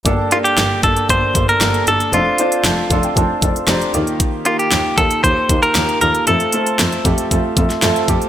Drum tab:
HH |x-xxx-xxx-xxxxxx|x-xxx-xxx-xxxxxx|x-xxx-xxx-xxxxxx|xxxxxxxxx-xxxxxx|
SD |----o-------o---|----o-------o---|----o-------o---|----o------oo---|
BD |o-----o-o-o-----|------o-o-o-----|o-----o-o-o-----|------o-o-o---o-|